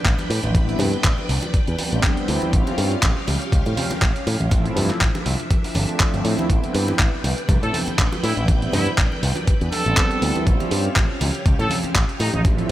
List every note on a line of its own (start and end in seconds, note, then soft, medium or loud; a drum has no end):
0.00 2.49 D4 medium
0.00 2.49 B4 medium
0.00 2.49 G5 medium
0.05 0.14 A1 medium
0.05 kick loud
0.05 clap loud
0.05 closed hi-hat medium
0.19 closed hi-hat soft
0.19 muted conga medium
0.30 0.38 A2 medium
0.30 open hi-hat loud
0.43 0.73 A1 medium
0.43 closed hi-hat soft
0.43 high conga medium
0.55 0.77 G3 medium
0.55 0.77 B3 medium
0.55 0.77 C4 medium
0.55 0.77 E4 loud
0.55 kick loud
0.55 closed hi-hat medium
0.55 muted conga medium
0.69 closed hi-hat soft
0.79 0.93 G2 medium
0.79 0.89 G3 medium
0.79 0.89 B3 medium
0.79 0.90 C4 medium
0.79 0.90 E4 medium
0.79 open hi-hat loud
0.79 muted conga medium
0.79 high conga medium
0.79 low conga medium
0.93 muted picked electric bass stroke soft
0.93 closed hi-hat soft
1.04 1.13 A1 medium
1.04 kick loud
1.04 clap loud
1.04 closed hi-hat medium
1.18 muted conga soft
1.29 1.38 C2 medium
1.29 open hi-hat medium
1.29 low conga medium
1.42 closed hi-hat medium
1.42 muted conga medium
1.54 kick loud
1.54 closed hi-hat medium
1.67 1.75 E2 medium
1.67 closed hi-hat soft
1.78 2.14 G3 medium
1.78 2.14 B3 medium
1.78 2.14 C4 medium
1.78 2.14 D4 medium
1.78 open hi-hat loud
1.78 muted conga medium
1.78 high conga medium
1.92 1.99 A1 medium
1.92 closed hi-hat medium
2.03 kick loud
2.03 clap loud
2.03 closed hi-hat medium
2.03 muted conga medium
2.17 2.50 G3 medium
2.17 2.51 B3 medium
2.17 2.51 C4 medium
2.17 2.51 E4 loud
2.17 closed hi-hat soft
2.28 2.37 D2 medium
2.28 open hi-hat medium
2.42 closed hi-hat soft
2.42 muted conga soft
2.42 high conga medium
2.52 2.62 A1 loud
2.52 2.75 G3 medium
2.52 2.75 C4 medium
2.52 4.49 C#4 medium
2.52 2.75 C#4 medium
2.52 2.75 F4 medium
2.52 4.50 G4 medium
2.52 4.50 F5 medium
2.52 kick loud
2.52 closed hi-hat medium
2.67 closed hi-hat soft
2.67 muted conga medium
2.77 2.94 G2 loud
2.77 2.93 G3 medium
2.77 2.93 C4 medium
2.77 2.93 C#4 medium
2.77 2.93 F4 loud
2.77 open hi-hat loud
2.92 closed hi-hat soft
3.03 3.11 A1 medium
3.03 kick loud
3.03 clap loud
3.03 closed hi-hat medium
3.03 muted conga medium
3.27 3.36 C#2 medium
3.27 open hi-hat loud
3.27 muted conga medium
3.42 closed hi-hat medium
3.52 3.61 C#2 medium
3.52 kick loud
3.52 closed hi-hat medium
3.52 low conga medium
3.66 3.73 A2 medium
3.66 3.79 G3 medium
3.66 3.79 C4 medium
3.66 3.79 C#4 medium
3.66 3.79 F4 loud
3.66 closed hi-hat soft
3.66 muted conga soft
3.77 open hi-hat loud
3.77 high conga medium
3.77 low conga medium
3.91 muted picked electric bass stroke soft
3.91 closed hi-hat medium
3.91 muted conga medium
4.02 4.10 A1 medium
4.02 kick loud
4.02 clap loud
4.02 closed hi-hat medium
4.16 closed hi-hat soft
4.27 4.35 A2 medium
4.27 open hi-hat medium
4.27 muted conga soft
4.40 4.70 A1 medium
4.40 closed hi-hat soft
4.40 high conga medium
4.51 4.74 F3 medium
4.51 6.48 F3 medium
4.51 4.74 A3 medium
4.51 4.74 C4 medium
4.51 10.43 D4 medium
4.51 4.74 E4 medium
4.51 6.48 E5 medium
4.51 kick loud
4.51 closed hi-hat medium
4.51 muted conga medium
4.66 closed hi-hat soft
4.76 4.89 G2 medium
4.76 4.86 F3 medium
4.76 4.86 A3 medium
4.76 4.86 C4 medium
4.76 4.86 E4 medium
4.76 open hi-hat loud
4.76 high conga medium
4.76 low conga medium
4.89 muted picked electric bass stroke soft
4.89 clap soft
4.89 closed hi-hat soft
4.89 muted conga medium
5.01 5.10 A1 medium
5.01 kick loud
5.01 clap loud
5.01 closed hi-hat medium
5.15 closed hi-hat soft
5.15 muted conga medium
5.26 5.35 C2 medium
5.26 open hi-hat loud
5.26 low conga medium
5.40 closed hi-hat soft
5.50 kick loud
5.50 closed hi-hat medium
5.50 muted conga soft
5.64 open hi-hat medium
5.75 5.84 G1 loud
5.75 6.10 F3 medium
5.75 6.11 A3 medium
5.75 6.11 C4 medium
5.75 6.11 D4 medium
5.75 open hi-hat loud
5.75 muted conga medium
5.75 high conga medium
5.89 closed hi-hat medium
6.00 kick loud
6.00 clap loud
6.00 closed hi-hat medium
6.13 6.21 G1 medium
6.13 6.47 F3 medium
6.13 6.47 A3 medium
6.13 6.47 C4 medium
6.13 6.47 E4 loud
6.13 closed hi-hat soft
6.13 muted conga soft
6.25 6.33 A2 loud
6.25 open hi-hat loud
6.38 closed hi-hat soft
6.38 muted conga medium
6.38 high conga medium
6.49 6.58 A1 medium
6.49 6.72 G3 medium
6.49 6.72 B3 medium
6.49 6.72 C4 medium
6.49 6.72 E4 medium
6.49 10.43 B4 medium
6.49 10.43 G5 medium
6.49 kick loud
6.49 closed hi-hat medium
6.64 closed hi-hat soft
6.64 muted conga medium
6.74 6.91 G2 medium
6.74 6.90 G3 medium
6.74 6.90 B3 medium
6.74 6.90 C4 medium
6.74 6.90 E4 loud
6.74 open hi-hat loud
6.88 closed hi-hat soft
6.88 muted conga medium
6.99 7.08 A1 medium
6.99 kick loud
6.99 clap loud
6.99 closed hi-hat medium
7.24 7.33 C2 medium
7.24 open hi-hat loud
7.24 muted conga soft
7.38 closed hi-hat soft
7.49 7.57 C2 medium
7.49 kick loud
7.49 closed hi-hat medium
7.49 muted conga medium
7.49 low conga medium
7.62 7.70 A2 medium
7.62 7.75 G3 medium
7.62 7.76 B3 medium
7.62 7.76 C4 medium
7.62 7.76 E4 loud
7.62 7.77 A4 medium
7.62 closed hi-hat soft
7.74 open hi-hat loud
7.74 high conga medium
7.74 low conga medium
7.87 muted picked electric bass stroke soft
7.87 closed hi-hat medium
7.87 muted conga medium
7.98 8.07 A1 loud
7.98 kick loud
7.98 clap loud
7.98 closed hi-hat medium
8.12 closed hi-hat soft
8.12 muted conga medium
8.23 8.32 A2 medium
8.23 8.32 E4 medium
8.23 open hi-hat loud
8.37 8.66 A1 medium
8.37 8.44 E4 medium
8.37 closed hi-hat soft
8.37 high conga medium
8.48 8.70 G3 medium
8.48 8.70 B3 medium
8.48 8.71 C4 medium
8.48 8.71 E4 medium
8.48 kick loud
8.48 closed hi-hat medium
8.48 muted conga soft
8.62 closed hi-hat soft
8.73 8.86 G2 loud
8.73 8.83 G3 medium
8.73 8.83 B3 medium
8.73 8.83 C4 medium
8.73 8.90 E4 medium
8.73 8.83 E4 medium
8.73 open hi-hat loud
8.73 muted conga medium
8.73 high conga medium
8.73 low conga medium
8.87 muted picked electric bass stroke soft
8.87 closed hi-hat soft
8.98 9.06 A1 medium
8.98 kick loud
8.98 clap loud
8.98 closed hi-hat medium
9.12 muted conga soft
9.23 9.31 C2 medium
9.23 open hi-hat loud
9.23 low conga medium
9.36 closed hi-hat medium
9.36 muted conga medium
9.47 kick loud
9.47 closed hi-hat medium
9.61 9.68 E2 medium
9.61 closed hi-hat soft
9.72 10.07 G3 medium
9.72 10.07 B3 medium
9.72 10.08 C4 medium
9.72 10.08 D4 medium
9.72 10.42 A4 medium
9.72 open hi-hat loud
9.72 muted conga medium
9.72 high conga medium
9.86 9.93 A1 medium
9.86 closed hi-hat medium
9.97 kick loud
9.97 clap loud
9.97 closed hi-hat medium
9.97 muted conga medium
10.11 10.44 G3 medium
10.11 10.44 B3 medium
10.11 10.44 C4 medium
10.11 10.44 E4 loud
10.11 closed hi-hat soft
10.22 10.30 D2 medium
10.22 open hi-hat loud
10.35 muted conga medium
10.35 high conga medium
10.46 10.55 A1 loud
10.46 10.69 G3 medium
10.46 10.69 C4 medium
10.46 12.43 C#4 medium
10.46 10.69 C#4 medium
10.46 10.69 F4 medium
10.46 12.43 G4 medium
10.46 12.43 F5 medium
10.46 kick loud
10.46 closed hi-hat medium
10.60 closed hi-hat soft
10.60 muted conga medium
10.71 10.88 G2 loud
10.71 10.87 G3 medium
10.71 10.87 C4 medium
10.71 10.87 C#4 medium
10.71 10.87 F4 loud
10.71 open hi-hat loud
10.85 closed hi-hat soft
10.96 11.05 A1 medium
10.96 kick loud
10.96 clap loud
10.96 closed hi-hat medium
10.96 muted conga soft
11.21 11.29 C#2 medium
11.21 open hi-hat loud
11.21 muted conga medium
11.35 closed hi-hat soft
11.46 11.54 C#2 medium
11.46 kick loud
11.46 closed hi-hat medium
11.46 low conga medium
11.59 11.66 A2 medium
11.59 11.72 G3 medium
11.59 11.72 C4 medium
11.59 11.73 C#4 medium
11.59 11.73 F4 loud
11.59 11.74 A4 medium
11.59 closed hi-hat soft
11.59 muted conga medium
11.70 open hi-hat loud
11.70 high conga medium
11.70 low conga medium
11.83 muted picked electric bass stroke soft
11.83 closed hi-hat medium
11.83 muted conga medium
11.95 12.04 A1 medium
11.95 kick loud
11.95 clap loud
11.95 closed hi-hat medium
12.09 closed hi-hat soft
12.19 12.28 A2 medium
12.19 12.29 D#4 medium
12.19 open hi-hat loud
12.19 muted conga soft
12.33 12.63 A1 medium
12.33 12.41 D#4 medium
12.33 closed hi-hat soft
12.33 high conga loud
12.44 12.67 F3 medium
12.44 12.71 F3 medium
12.44 12.67 A3 medium
12.44 12.67 C4 medium
12.44 12.71 D4 medium
12.44 12.67 E4 loud
12.44 12.71 E5 medium
12.44 kick loud
12.44 closed hi-hat medium
12.44 muted conga medium
12.58 closed hi-hat soft